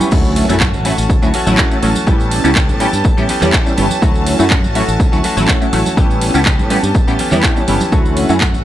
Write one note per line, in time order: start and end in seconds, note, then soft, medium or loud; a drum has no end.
0.00 0.12 B3 soft
0.00 0.11 C#4 medium
0.00 0.12 G4 medium
0.00 0.13 C#6 medium
0.00 tambourine medium
0.00 high conga medium
0.11 0.43 D2 loud
0.11 0.49 E3 medium
0.11 0.46 F#3 medium
0.11 0.49 A3 medium
0.11 0.46 C#4 medium
0.11 0.49 C#4 medium
0.11 0.46 E4 medium
0.11 0.48 F#4 medium
0.11 7.93 A5 medium
0.11 kick loud
0.11 crash loud
0.11 tambourine medium
0.11 impact medium
0.24 tambourine soft
0.36 open hi-hat loud
0.49 0.75 F#2 loud
0.49 0.55 F#3 medium
0.49 0.55 A3 medium
0.49 0.60 A3 medium
0.49 0.55 C#4 medium
0.49 0.60 C#4 medium
0.49 0.55 E4 medium
0.49 0.60 F#4 medium
0.49 tambourine medium
0.60 0.74 E3 medium
0.60 0.74 A3 medium
0.60 0.73 C#4 loud
0.60 0.72 F#4 medium
0.60 kick loud
0.60 clap loud
0.60 tambourine medium
0.73 0.90 A1 medium
0.73 0.84 A3 medium
0.73 0.85 C#4 medium
0.73 0.85 F#4 medium
0.73 tambourine soft
0.73 high conga medium
0.85 0.98 E3 medium
0.85 0.91 F#3 medium
0.85 0.92 A3 medium
0.85 0.98 A3 medium
0.85 0.92 C#4 medium
0.85 0.97 C#4 medium
0.85 0.92 E4 medium
0.85 0.96 F#4 medium
0.85 open hi-hat loud
0.98 1.06 A1 medium
0.98 1.23 A3 soft
0.98 1.22 C#4 medium
0.98 1.21 F#4 medium
0.98 tambourine medium
1.10 kick loud
1.10 tambourine medium
1.22 1.31 D2 medium
1.22 1.28 F#3 loud
1.22 1.28 A3 medium
1.22 1.33 A3 medium
1.22 1.28 C#4 medium
1.22 1.34 C#4 medium
1.22 1.28 E4 loud
1.22 1.34 F#4 medium
1.22 tambourine soft
1.33 1.47 E3 medium
1.33 1.47 A3 medium
1.33 1.46 C#4 medium
1.33 1.45 F#4 medium
1.33 open hi-hat loud
1.33 high conga medium
1.46 1.55 A1 medium
1.46 1.68 F#3 medium
1.46 1.68 A3 medium
1.46 1.57 A3 medium
1.46 1.68 C#4 medium
1.46 1.58 C#4 medium
1.46 1.68 E4 medium
1.46 1.58 F#4 medium
1.46 tambourine medium
1.46 low conga medium
1.58 1.81 E3 loud
1.58 1.82 A3 medium
1.58 1.82 C#4 loud
1.58 1.83 F#4 loud
1.58 kick loud
1.58 clap loud
1.58 tambourine medium
1.71 1.77 F#3 medium
1.71 1.77 A3 medium
1.71 1.77 C#4 medium
1.71 1.77 E4 medium
1.71 tambourine soft
1.82 1.92 A1 medium
1.82 2.06 E3 medium
1.82 1.89 F#3 medium
1.82 1.89 A3 medium
1.82 2.07 A3 medium
1.82 1.89 C#4 medium
1.82 2.06 C#4 medium
1.82 1.89 E4 medium
1.82 2.08 F#4 medium
1.82 open hi-hat loud
1.95 tambourine medium
1.95 high conga medium
2.07 2.38 A1 loud
2.07 2.44 E3 medium
2.07 2.41 G3 medium
2.07 2.41 B3 medium
2.07 2.44 B3 medium
2.07 2.41 C#4 medium
2.07 2.44 C#4 loud
2.07 2.41 E4 medium
2.07 2.43 G4 medium
2.07 kick loud
2.07 tambourine medium
2.20 tambourine soft
2.31 open hi-hat loud
2.44 2.70 C#2 loud
2.44 2.50 G3 medium
2.44 2.50 B3 medium
2.44 2.55 B3 soft
2.44 2.50 C#4 medium
2.44 2.55 C#4 medium
2.44 2.50 E4 medium
2.44 2.56 G4 medium
2.44 tambourine medium
2.55 2.69 E3 medium
2.55 2.69 B3 medium
2.55 2.68 C#4 loud
2.55 2.67 G4 loud
2.55 kick loud
2.55 clap loud
2.55 tambourine medium
2.68 2.86 A2 medium
2.68 2.79 B3 soft
2.68 2.80 C#4 medium
2.68 2.80 G4 medium
2.68 tambourine soft
2.68 high conga medium
2.80 2.93 E3 medium
2.80 2.86 G3 medium
2.80 2.87 B3 medium
2.80 2.93 B3 medium
2.80 2.87 C#4 medium
2.80 2.92 C#4 medium
2.80 2.87 E4 medium
2.80 2.91 G4 medium
2.80 open hi-hat loud
2.93 3.01 G2 medium
2.93 3.18 B3 medium
2.93 3.17 C#4 medium
2.93 3.16 G4 medium
2.93 tambourine medium
3.04 3.14 A1 medium
3.04 kick loud
3.04 tambourine medium
3.17 3.26 A1 medium
3.17 3.23 G3 loud
3.17 3.23 B3 medium
3.17 3.28 B3 medium
3.17 3.23 C#4 medium
3.17 3.29 C#4 medium
3.17 3.24 E4 loud
3.17 3.29 G4 medium
3.17 tambourine soft
3.29 3.52 E3 medium
3.29 3.52 B3 medium
3.29 3.53 C#4 medium
3.29 3.53 G4 medium
3.29 open hi-hat loud
3.29 high conga medium
3.41 3.50 E2 medium
3.41 3.63 G3 medium
3.41 3.63 B3 medium
3.41 3.63 C#4 medium
3.41 3.63 E4 medium
3.41 clap soft
3.41 tambourine medium
3.41 low conga medium
3.53 3.76 E3 loud
3.53 3.77 B3 loud
3.53 3.77 C#4 loud
3.53 3.78 G4 loud
3.53 kick loud
3.53 clap loud
3.53 tambourine medium
3.66 3.72 G3 medium
3.66 3.72 B3 medium
3.66 3.72 C#4 medium
3.66 3.72 E4 medium
3.66 tambourine soft
3.77 3.87 G1 loud
3.77 4.00 E3 medium
3.77 3.84 G3 medium
3.77 3.84 B3 medium
3.77 4.02 B3 medium
3.77 3.84 C#4 medium
3.77 4.01 C#4 medium
3.77 3.84 E4 medium
3.77 4.03 G4 medium
3.77 open hi-hat loud
3.91 tambourine medium
3.91 high conga medium
4.02 4.33 D2 loud
4.02 4.39 E3 medium
4.02 4.36 F#3 medium
4.02 4.36 A3 medium
4.02 4.40 A3 medium
4.02 4.36 C#4 medium
4.02 4.39 C#4 loud
4.02 4.37 E4 medium
4.02 4.38 F#4 medium
4.02 kick loud
4.02 tambourine medium
4.14 tambourine soft
4.27 open hi-hat loud
4.39 4.65 F#2 loud
4.39 4.45 F#3 medium
4.39 4.45 A3 medium
4.39 4.50 A3 medium
4.39 4.45 C#4 medium
4.39 4.50 C#4 medium
4.39 4.45 E4 medium
4.39 4.51 F#4 medium
4.39 tambourine medium
4.50 4.64 E3 medium
4.50 4.64 A3 loud
4.50 4.63 C#4 loud
4.50 4.62 F#4 loud
4.50 kick loud
4.50 clap loud
4.50 tambourine medium
4.63 4.81 A1 medium
4.63 4.74 A3 medium
4.63 4.75 C#4 medium
4.63 4.75 F#4 medium
4.63 tambourine soft
4.63 high conga loud
4.75 5.12 E3 medium
4.75 4.82 F#3 medium
4.75 4.82 A3 medium
4.75 5.13 A3 medium
4.75 4.82 C#4 medium
4.75 5.12 C#4 medium
4.75 4.82 E4 medium
4.75 5.11 F#4 medium
4.75 open hi-hat loud
4.88 4.96 A1 medium
4.88 tambourine medium
5.00 5.09 D2 medium
5.00 kick loud
5.00 tambourine medium
5.12 5.21 D2 medium
5.12 5.18 F#3 loud
5.12 5.18 A3 medium
5.12 5.23 A3 soft
5.12 5.18 C#4 medium
5.12 5.24 C#4 medium
5.12 5.18 E4 loud
5.12 5.24 F#4 medium
5.12 tambourine soft
5.24 5.37 E3 medium
5.24 5.37 A3 medium
5.24 5.36 C#4 medium
5.24 5.35 F#4 medium
5.24 open hi-hat loud
5.24 high conga medium
5.37 5.45 A1 medium
5.37 5.58 F#3 medium
5.37 5.58 A3 medium
5.37 5.47 A3 soft
5.37 5.58 C#4 medium
5.37 5.48 C#4 medium
5.37 5.58 E4 medium
5.37 5.48 F#4 medium
5.37 tambourine medium
5.37 low conga medium
5.48 5.71 E3 loud
5.48 5.72 A3 loud
5.48 5.72 C#4 loud
5.48 5.73 F#4 loud
5.48 kick loud
5.48 clap loud
5.48 tambourine medium
5.61 5.67 F#3 medium
5.61 5.67 A3 medium
5.61 5.67 C#4 medium
5.61 5.67 E4 medium
5.61 tambourine soft
5.72 5.82 A1 loud
5.72 5.96 E3 medium
5.72 5.79 F#3 medium
5.72 5.79 A3 medium
5.72 5.97 A3 medium
5.72 5.79 C#4 medium
5.72 5.97 C#4 medium
5.72 5.79 E4 medium
5.72 5.98 F#4 medium
5.72 open hi-hat loud
5.86 tambourine medium
5.86 high conga loud
5.97 6.28 A1 loud
5.97 6.34 E3 medium
5.97 6.31 G3 medium
5.97 6.31 B3 medium
5.97 6.35 B3 medium
5.97 6.32 C#4 medium
5.97 6.34 C#4 loud
5.97 6.32 E4 medium
5.97 6.33 G4 loud
5.97 kick loud
5.97 tambourine medium
6.11 tambourine soft
6.21 open hi-hat loud
6.34 6.60 C#2 loud
6.34 6.40 G3 medium
6.34 6.40 B3 medium
6.34 6.45 B3 soft
6.34 6.40 C#4 medium
6.34 6.45 C#4 medium
6.34 6.40 E4 medium
6.34 6.46 G4 medium
6.34 tambourine medium
6.46 6.59 E3 medium
6.46 6.59 B3 loud
6.46 6.58 C#4 loud
6.46 6.57 G4 loud
6.46 kick loud
6.46 clap loud
6.46 tambourine medium
6.58 6.76 A2 medium
6.58 6.69 B3 soft
6.58 6.70 C#4 medium
6.58 6.70 G4 medium
6.58 tambourine soft
6.58 high conga loud
6.70 6.83 E3 medium
6.70 6.77 G3 medium
6.70 6.77 B3 medium
6.70 6.83 B3 medium
6.70 6.77 C#4 medium
6.70 6.83 C#4 medium
6.70 6.77 E4 loud
6.70 6.82 G4 medium
6.70 open hi-hat loud
6.83 6.91 G2 medium
6.83 7.08 B3 soft
6.83 7.07 C#4 medium
6.83 7.06 G4 medium
6.83 tambourine medium
6.94 7.04 A1 medium
6.94 kick loud
6.94 tambourine medium
7.07 7.16 A1 medium
7.07 7.13 G3 loud
7.07 7.13 B3 loud
7.07 7.18 B3 medium
7.07 7.14 C#4 medium
7.07 7.19 C#4 medium
7.07 7.14 E4 loud
7.07 7.19 G4 medium
7.07 tambourine soft
7.19 7.32 E3 medium
7.19 7.32 B3 medium
7.19 7.32 C#4 medium
7.19 7.31 G4 medium
7.19 open hi-hat loud
7.19 high conga medium
7.31 7.40 E2 medium
7.31 7.53 G3 medium
7.31 7.53 B3 medium
7.31 7.43 B3 soft
7.31 7.54 C#4 medium
7.31 7.43 C#4 soft
7.31 7.54 E4 medium
7.31 7.43 G4 medium
7.31 clap soft
7.31 tambourine medium
7.31 low conga medium
7.43 7.66 E3 medium
7.43 7.67 B3 medium
7.43 7.68 C#4 loud
7.43 7.68 G4 loud
7.43 kick loud
7.43 clap loud
7.43 tambourine medium
7.56 7.62 G3 medium
7.56 7.62 B3 medium
7.56 7.62 C#4 medium
7.56 7.62 E4 medium
7.56 tambourine soft
7.67 7.77 G1 loud
7.67 7.91 E3 medium
7.67 7.74 G3 medium
7.67 7.74 B3 medium
7.67 7.92 B3 medium
7.67 7.74 C#4 medium
7.67 7.92 C#4 medium
7.67 7.75 E4 medium
7.67 7.93 G4 medium
7.67 open hi-hat loud
7.80 tambourine medium
7.80 high conga loud
7.92 8.24 D2 loud
7.92 8.30 E3 medium
7.92 8.26 F#3 medium
7.92 8.27 A3 medium
7.92 8.30 A3 medium
7.92 8.27 C#4 medium
7.92 8.29 C#4 loud
7.92 8.27 E4 medium
7.92 8.28 F#4 medium
7.92 8.64 F#5 medium
7.92 kick loud
7.92 tambourine medium
8.05 tambourine soft
8.17 open hi-hat loud
8.29 8.56 F#2 loud
8.29 8.35 F#3 medium
8.29 8.35 A3 medium
8.29 8.40 A3 soft
8.29 8.35 C#4 medium
8.29 8.40 C#4 medium
8.29 8.36 E4 medium
8.29 8.41 F#4 medium
8.29 tambourine medium
8.41 8.54 E3 medium
8.41 8.54 A3 loud
8.41 8.53 C#4 loud
8.41 8.52 F#4 loud
8.41 kick loud
8.41 clap loud
8.41 tambourine medium
8.54 8.64 A1 medium
8.54 8.64 A3 soft
8.54 8.64 C#4 medium
8.54 8.64 F#4 medium
8.54 tambourine soft
8.54 high conga loud